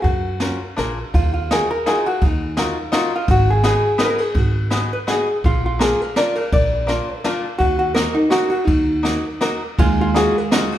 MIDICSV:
0, 0, Header, 1, 6, 480
1, 0, Start_track
1, 0, Key_signature, -6, "minor"
1, 0, Tempo, 359497
1, 61, Time_signature, 3, 2, 24, 8
1, 11580, Tempo, 368324
1, 14326, End_track
2, 0, Start_track
2, 0, Title_t, "Hollow-body jazz guitar"
2, 0, Program_c, 0, 26
2, 28, Note_on_c, 0, 66, 65
2, 964, Note_off_c, 0, 66, 0
2, 1529, Note_on_c, 0, 65, 78
2, 1770, Note_off_c, 0, 65, 0
2, 1786, Note_on_c, 0, 65, 59
2, 2014, Note_off_c, 0, 65, 0
2, 2035, Note_on_c, 0, 68, 78
2, 2273, Note_off_c, 0, 68, 0
2, 2279, Note_on_c, 0, 70, 81
2, 2498, Note_off_c, 0, 70, 0
2, 2503, Note_on_c, 0, 68, 78
2, 2755, Note_on_c, 0, 66, 72
2, 2765, Note_off_c, 0, 68, 0
2, 3003, Note_off_c, 0, 66, 0
2, 3003, Note_on_c, 0, 63, 86
2, 3927, Note_off_c, 0, 63, 0
2, 4214, Note_on_c, 0, 65, 75
2, 4410, Note_off_c, 0, 65, 0
2, 4417, Note_on_c, 0, 66, 104
2, 4666, Note_off_c, 0, 66, 0
2, 4679, Note_on_c, 0, 68, 73
2, 4866, Note_off_c, 0, 68, 0
2, 4882, Note_on_c, 0, 68, 88
2, 5351, Note_on_c, 0, 70, 99
2, 5357, Note_off_c, 0, 68, 0
2, 5389, Note_on_c, 0, 71, 81
2, 5407, Note_off_c, 0, 70, 0
2, 5457, Note_off_c, 0, 71, 0
2, 5477, Note_on_c, 0, 70, 84
2, 5610, Note_off_c, 0, 70, 0
2, 5610, Note_on_c, 0, 68, 75
2, 5848, Note_off_c, 0, 68, 0
2, 5848, Note_on_c, 0, 66, 93
2, 6579, Note_off_c, 0, 66, 0
2, 6584, Note_on_c, 0, 71, 75
2, 6651, Note_off_c, 0, 71, 0
2, 6813, Note_on_c, 0, 68, 81
2, 7173, Note_off_c, 0, 68, 0
2, 7286, Note_on_c, 0, 65, 91
2, 7539, Note_off_c, 0, 65, 0
2, 7555, Note_on_c, 0, 65, 65
2, 7765, Note_off_c, 0, 65, 0
2, 7765, Note_on_c, 0, 68, 98
2, 8032, Note_off_c, 0, 68, 0
2, 8032, Note_on_c, 0, 70, 82
2, 8240, Note_on_c, 0, 74, 93
2, 8245, Note_off_c, 0, 70, 0
2, 8486, Note_on_c, 0, 70, 81
2, 8505, Note_off_c, 0, 74, 0
2, 8712, Note_off_c, 0, 70, 0
2, 8722, Note_on_c, 0, 74, 93
2, 9623, Note_off_c, 0, 74, 0
2, 10128, Note_on_c, 0, 66, 109
2, 10384, Note_off_c, 0, 66, 0
2, 10400, Note_on_c, 0, 66, 76
2, 10603, Note_off_c, 0, 66, 0
2, 10609, Note_on_c, 0, 70, 110
2, 10874, Note_on_c, 0, 63, 74
2, 10887, Note_off_c, 0, 70, 0
2, 11085, Note_off_c, 0, 63, 0
2, 11090, Note_on_c, 0, 66, 99
2, 11332, Note_off_c, 0, 66, 0
2, 11348, Note_on_c, 0, 66, 78
2, 11546, Note_off_c, 0, 66, 0
2, 11546, Note_on_c, 0, 63, 89
2, 12524, Note_off_c, 0, 63, 0
2, 13043, Note_on_c, 0, 65, 91
2, 13306, Note_off_c, 0, 65, 0
2, 13328, Note_on_c, 0, 65, 84
2, 13525, Note_on_c, 0, 68, 106
2, 13532, Note_off_c, 0, 65, 0
2, 13806, Note_off_c, 0, 68, 0
2, 13806, Note_on_c, 0, 70, 98
2, 14032, Note_off_c, 0, 70, 0
2, 14032, Note_on_c, 0, 68, 102
2, 14288, Note_off_c, 0, 68, 0
2, 14326, End_track
3, 0, Start_track
3, 0, Title_t, "Five-string banjo"
3, 0, Program_c, 1, 105
3, 534, Note_on_c, 1, 61, 55
3, 540, Note_on_c, 1, 65, 44
3, 550, Note_on_c, 1, 66, 41
3, 559, Note_on_c, 1, 70, 55
3, 806, Note_off_c, 1, 61, 0
3, 809, Note_off_c, 1, 65, 0
3, 814, Note_off_c, 1, 66, 0
3, 816, Note_off_c, 1, 70, 0
3, 1022, Note_on_c, 1, 62, 55
3, 1033, Note_on_c, 1, 65, 49
3, 1040, Note_on_c, 1, 68, 50
3, 1048, Note_on_c, 1, 70, 61
3, 1300, Note_off_c, 1, 62, 0
3, 1305, Note_off_c, 1, 65, 0
3, 1309, Note_off_c, 1, 68, 0
3, 1311, Note_off_c, 1, 70, 0
3, 2012, Note_on_c, 1, 63, 61
3, 2020, Note_on_c, 1, 65, 54
3, 2030, Note_on_c, 1, 66, 54
3, 2036, Note_on_c, 1, 70, 62
3, 2275, Note_off_c, 1, 63, 0
3, 2279, Note_off_c, 1, 65, 0
3, 2284, Note_off_c, 1, 66, 0
3, 2285, Note_off_c, 1, 70, 0
3, 2487, Note_on_c, 1, 63, 65
3, 2493, Note_on_c, 1, 65, 53
3, 2501, Note_on_c, 1, 66, 52
3, 2515, Note_on_c, 1, 70, 61
3, 2749, Note_off_c, 1, 63, 0
3, 2752, Note_off_c, 1, 65, 0
3, 2756, Note_off_c, 1, 66, 0
3, 2763, Note_off_c, 1, 70, 0
3, 3428, Note_on_c, 1, 63, 57
3, 3441, Note_on_c, 1, 65, 60
3, 3448, Note_on_c, 1, 66, 53
3, 3455, Note_on_c, 1, 70, 64
3, 3691, Note_off_c, 1, 63, 0
3, 3697, Note_off_c, 1, 65, 0
3, 3701, Note_off_c, 1, 66, 0
3, 3703, Note_off_c, 1, 70, 0
3, 3897, Note_on_c, 1, 63, 79
3, 3907, Note_on_c, 1, 65, 68
3, 3914, Note_on_c, 1, 66, 68
3, 3926, Note_on_c, 1, 70, 76
3, 4162, Note_off_c, 1, 63, 0
3, 4166, Note_off_c, 1, 65, 0
3, 4170, Note_off_c, 1, 66, 0
3, 4176, Note_off_c, 1, 70, 0
3, 4855, Note_on_c, 1, 59, 62
3, 4861, Note_on_c, 1, 63, 57
3, 4868, Note_on_c, 1, 66, 53
3, 4879, Note_on_c, 1, 68, 63
3, 5115, Note_off_c, 1, 59, 0
3, 5118, Note_off_c, 1, 63, 0
3, 5120, Note_off_c, 1, 66, 0
3, 5126, Note_off_c, 1, 68, 0
3, 5315, Note_on_c, 1, 59, 61
3, 5324, Note_on_c, 1, 63, 60
3, 5334, Note_on_c, 1, 66, 63
3, 5341, Note_on_c, 1, 68, 65
3, 5584, Note_off_c, 1, 59, 0
3, 5588, Note_off_c, 1, 63, 0
3, 5593, Note_off_c, 1, 66, 0
3, 5597, Note_off_c, 1, 68, 0
3, 6283, Note_on_c, 1, 59, 59
3, 6292, Note_on_c, 1, 63, 51
3, 6293, Note_on_c, 1, 66, 55
3, 6302, Note_on_c, 1, 68, 69
3, 6552, Note_off_c, 1, 59, 0
3, 6554, Note_off_c, 1, 63, 0
3, 6556, Note_off_c, 1, 66, 0
3, 6561, Note_off_c, 1, 68, 0
3, 6770, Note_on_c, 1, 59, 51
3, 6776, Note_on_c, 1, 63, 49
3, 6781, Note_on_c, 1, 66, 57
3, 6792, Note_on_c, 1, 68, 69
3, 7041, Note_off_c, 1, 63, 0
3, 7043, Note_off_c, 1, 59, 0
3, 7047, Note_off_c, 1, 66, 0
3, 7052, Note_off_c, 1, 68, 0
3, 7735, Note_on_c, 1, 58, 57
3, 7752, Note_on_c, 1, 62, 53
3, 7752, Note_on_c, 1, 65, 58
3, 7760, Note_on_c, 1, 70, 66
3, 8005, Note_off_c, 1, 58, 0
3, 8013, Note_off_c, 1, 62, 0
3, 8014, Note_off_c, 1, 65, 0
3, 8018, Note_off_c, 1, 70, 0
3, 8226, Note_on_c, 1, 58, 64
3, 8232, Note_on_c, 1, 62, 51
3, 8241, Note_on_c, 1, 65, 55
3, 8250, Note_on_c, 1, 70, 69
3, 8491, Note_off_c, 1, 58, 0
3, 8493, Note_off_c, 1, 62, 0
3, 8498, Note_off_c, 1, 65, 0
3, 8502, Note_off_c, 1, 70, 0
3, 9172, Note_on_c, 1, 58, 67
3, 9184, Note_on_c, 1, 62, 57
3, 9198, Note_on_c, 1, 65, 56
3, 9204, Note_on_c, 1, 70, 66
3, 9444, Note_off_c, 1, 58, 0
3, 9450, Note_off_c, 1, 62, 0
3, 9457, Note_off_c, 1, 65, 0
3, 9459, Note_off_c, 1, 70, 0
3, 9672, Note_on_c, 1, 58, 71
3, 9678, Note_on_c, 1, 62, 67
3, 9683, Note_on_c, 1, 65, 67
3, 9692, Note_on_c, 1, 70, 86
3, 9934, Note_off_c, 1, 58, 0
3, 9937, Note_off_c, 1, 62, 0
3, 9940, Note_off_c, 1, 65, 0
3, 9941, Note_off_c, 1, 70, 0
3, 10612, Note_on_c, 1, 58, 63
3, 10620, Note_on_c, 1, 63, 60
3, 10627, Note_on_c, 1, 66, 62
3, 10635, Note_on_c, 1, 70, 74
3, 10880, Note_off_c, 1, 58, 0
3, 10884, Note_off_c, 1, 63, 0
3, 10888, Note_off_c, 1, 66, 0
3, 10892, Note_off_c, 1, 70, 0
3, 11084, Note_on_c, 1, 58, 63
3, 11094, Note_on_c, 1, 63, 52
3, 11104, Note_on_c, 1, 66, 66
3, 11113, Note_on_c, 1, 70, 67
3, 11355, Note_off_c, 1, 58, 0
3, 11360, Note_off_c, 1, 63, 0
3, 11365, Note_off_c, 1, 66, 0
3, 11369, Note_off_c, 1, 70, 0
3, 12045, Note_on_c, 1, 58, 60
3, 12051, Note_on_c, 1, 63, 53
3, 12063, Note_on_c, 1, 66, 51
3, 12068, Note_on_c, 1, 70, 57
3, 12315, Note_off_c, 1, 58, 0
3, 12319, Note_off_c, 1, 63, 0
3, 12325, Note_off_c, 1, 66, 0
3, 12326, Note_off_c, 1, 70, 0
3, 12537, Note_on_c, 1, 58, 66
3, 12545, Note_on_c, 1, 63, 56
3, 12547, Note_on_c, 1, 66, 64
3, 12554, Note_on_c, 1, 70, 69
3, 12807, Note_off_c, 1, 58, 0
3, 12808, Note_off_c, 1, 63, 0
3, 12811, Note_off_c, 1, 66, 0
3, 12814, Note_off_c, 1, 70, 0
3, 13497, Note_on_c, 1, 58, 61
3, 13504, Note_on_c, 1, 63, 63
3, 13513, Note_on_c, 1, 65, 58
3, 13525, Note_on_c, 1, 66, 67
3, 13765, Note_off_c, 1, 58, 0
3, 13768, Note_off_c, 1, 63, 0
3, 13773, Note_off_c, 1, 65, 0
3, 13779, Note_off_c, 1, 66, 0
3, 13979, Note_on_c, 1, 58, 66
3, 13985, Note_on_c, 1, 63, 63
3, 13996, Note_on_c, 1, 65, 65
3, 14004, Note_on_c, 1, 66, 76
3, 14242, Note_off_c, 1, 58, 0
3, 14243, Note_off_c, 1, 63, 0
3, 14250, Note_off_c, 1, 65, 0
3, 14253, Note_off_c, 1, 66, 0
3, 14326, End_track
4, 0, Start_track
4, 0, Title_t, "Hollow-body jazz guitar"
4, 0, Program_c, 2, 26
4, 13036, Note_on_c, 2, 56, 86
4, 14326, Note_off_c, 2, 56, 0
4, 14326, End_track
5, 0, Start_track
5, 0, Title_t, "Upright bass"
5, 0, Program_c, 3, 32
5, 54, Note_on_c, 3, 42, 91
5, 689, Note_off_c, 3, 42, 0
5, 1037, Note_on_c, 3, 34, 68
5, 1356, Note_off_c, 3, 34, 0
5, 1524, Note_on_c, 3, 39, 81
5, 2151, Note_off_c, 3, 39, 0
5, 2962, Note_on_c, 3, 39, 97
5, 3576, Note_off_c, 3, 39, 0
5, 4383, Note_on_c, 3, 32, 93
5, 4999, Note_off_c, 3, 32, 0
5, 5805, Note_on_c, 3, 32, 91
5, 6435, Note_off_c, 3, 32, 0
5, 7265, Note_on_c, 3, 34, 83
5, 7892, Note_off_c, 3, 34, 0
5, 8713, Note_on_c, 3, 34, 89
5, 9336, Note_off_c, 3, 34, 0
5, 10153, Note_on_c, 3, 39, 93
5, 10771, Note_off_c, 3, 39, 0
5, 11583, Note_on_c, 3, 39, 101
5, 12206, Note_off_c, 3, 39, 0
5, 13030, Note_on_c, 3, 39, 99
5, 13651, Note_off_c, 3, 39, 0
5, 14326, End_track
6, 0, Start_track
6, 0, Title_t, "Drums"
6, 49, Note_on_c, 9, 51, 41
6, 56, Note_on_c, 9, 36, 71
6, 183, Note_off_c, 9, 51, 0
6, 189, Note_off_c, 9, 36, 0
6, 534, Note_on_c, 9, 38, 51
6, 534, Note_on_c, 9, 51, 35
6, 667, Note_off_c, 9, 38, 0
6, 667, Note_off_c, 9, 51, 0
6, 1035, Note_on_c, 9, 38, 45
6, 1035, Note_on_c, 9, 51, 34
6, 1169, Note_off_c, 9, 38, 0
6, 1169, Note_off_c, 9, 51, 0
6, 1525, Note_on_c, 9, 36, 78
6, 1531, Note_on_c, 9, 51, 46
6, 1659, Note_off_c, 9, 36, 0
6, 1665, Note_off_c, 9, 51, 0
6, 2014, Note_on_c, 9, 38, 57
6, 2014, Note_on_c, 9, 51, 39
6, 2147, Note_off_c, 9, 38, 0
6, 2147, Note_off_c, 9, 51, 0
6, 2490, Note_on_c, 9, 38, 52
6, 2490, Note_on_c, 9, 51, 39
6, 2624, Note_off_c, 9, 38, 0
6, 2624, Note_off_c, 9, 51, 0
6, 2750, Note_on_c, 9, 51, 41
6, 2884, Note_off_c, 9, 51, 0
6, 2954, Note_on_c, 9, 51, 44
6, 2963, Note_on_c, 9, 36, 82
6, 3087, Note_off_c, 9, 51, 0
6, 3096, Note_off_c, 9, 36, 0
6, 3432, Note_on_c, 9, 38, 63
6, 3432, Note_on_c, 9, 51, 43
6, 3565, Note_off_c, 9, 38, 0
6, 3565, Note_off_c, 9, 51, 0
6, 3906, Note_on_c, 9, 38, 58
6, 3906, Note_on_c, 9, 51, 46
6, 4039, Note_off_c, 9, 38, 0
6, 4039, Note_off_c, 9, 51, 0
6, 4378, Note_on_c, 9, 51, 52
6, 4382, Note_on_c, 9, 36, 86
6, 4512, Note_off_c, 9, 51, 0
6, 4516, Note_off_c, 9, 36, 0
6, 4853, Note_on_c, 9, 38, 55
6, 4853, Note_on_c, 9, 51, 43
6, 4986, Note_off_c, 9, 38, 0
6, 4986, Note_off_c, 9, 51, 0
6, 5322, Note_on_c, 9, 38, 52
6, 5322, Note_on_c, 9, 51, 42
6, 5456, Note_off_c, 9, 38, 0
6, 5456, Note_off_c, 9, 51, 0
6, 5586, Note_on_c, 9, 51, 41
6, 5719, Note_off_c, 9, 51, 0
6, 5799, Note_on_c, 9, 51, 48
6, 5809, Note_on_c, 9, 36, 81
6, 5933, Note_off_c, 9, 51, 0
6, 5943, Note_off_c, 9, 36, 0
6, 6289, Note_on_c, 9, 38, 54
6, 6289, Note_on_c, 9, 51, 40
6, 6423, Note_off_c, 9, 38, 0
6, 6423, Note_off_c, 9, 51, 0
6, 6779, Note_on_c, 9, 38, 53
6, 6779, Note_on_c, 9, 51, 39
6, 6913, Note_off_c, 9, 38, 0
6, 6913, Note_off_c, 9, 51, 0
6, 7267, Note_on_c, 9, 51, 45
6, 7268, Note_on_c, 9, 36, 87
6, 7401, Note_off_c, 9, 36, 0
6, 7401, Note_off_c, 9, 51, 0
6, 7749, Note_on_c, 9, 38, 52
6, 7749, Note_on_c, 9, 51, 43
6, 7883, Note_off_c, 9, 38, 0
6, 7883, Note_off_c, 9, 51, 0
6, 8226, Note_on_c, 9, 38, 56
6, 8226, Note_on_c, 9, 51, 45
6, 8360, Note_off_c, 9, 38, 0
6, 8360, Note_off_c, 9, 51, 0
6, 8492, Note_on_c, 9, 51, 42
6, 8625, Note_off_c, 9, 51, 0
6, 8710, Note_on_c, 9, 51, 47
6, 8712, Note_on_c, 9, 36, 87
6, 8843, Note_off_c, 9, 51, 0
6, 8846, Note_off_c, 9, 36, 0
6, 9189, Note_on_c, 9, 38, 49
6, 9189, Note_on_c, 9, 51, 35
6, 9322, Note_off_c, 9, 38, 0
6, 9322, Note_off_c, 9, 51, 0
6, 9671, Note_on_c, 9, 38, 54
6, 9671, Note_on_c, 9, 51, 39
6, 9804, Note_off_c, 9, 38, 0
6, 9804, Note_off_c, 9, 51, 0
6, 10150, Note_on_c, 9, 36, 74
6, 10150, Note_on_c, 9, 51, 47
6, 10283, Note_off_c, 9, 36, 0
6, 10284, Note_off_c, 9, 51, 0
6, 10626, Note_on_c, 9, 38, 52
6, 10626, Note_on_c, 9, 51, 38
6, 10759, Note_off_c, 9, 38, 0
6, 10759, Note_off_c, 9, 51, 0
6, 11099, Note_on_c, 9, 38, 60
6, 11099, Note_on_c, 9, 51, 43
6, 11233, Note_off_c, 9, 38, 0
6, 11233, Note_off_c, 9, 51, 0
6, 11365, Note_on_c, 9, 51, 43
6, 11499, Note_off_c, 9, 51, 0
6, 11581, Note_on_c, 9, 36, 85
6, 11583, Note_on_c, 9, 51, 47
6, 11712, Note_off_c, 9, 36, 0
6, 11713, Note_off_c, 9, 51, 0
6, 12068, Note_on_c, 9, 38, 54
6, 12068, Note_on_c, 9, 51, 42
6, 12198, Note_off_c, 9, 38, 0
6, 12198, Note_off_c, 9, 51, 0
6, 12540, Note_on_c, 9, 38, 53
6, 12540, Note_on_c, 9, 51, 43
6, 12670, Note_off_c, 9, 38, 0
6, 12670, Note_off_c, 9, 51, 0
6, 13030, Note_on_c, 9, 36, 96
6, 13033, Note_on_c, 9, 51, 50
6, 13160, Note_off_c, 9, 36, 0
6, 13163, Note_off_c, 9, 51, 0
6, 13513, Note_on_c, 9, 38, 64
6, 13513, Note_on_c, 9, 51, 47
6, 13643, Note_off_c, 9, 38, 0
6, 13643, Note_off_c, 9, 51, 0
6, 13985, Note_on_c, 9, 38, 67
6, 13985, Note_on_c, 9, 51, 39
6, 14115, Note_off_c, 9, 38, 0
6, 14115, Note_off_c, 9, 51, 0
6, 14247, Note_on_c, 9, 51, 41
6, 14326, Note_off_c, 9, 51, 0
6, 14326, End_track
0, 0, End_of_file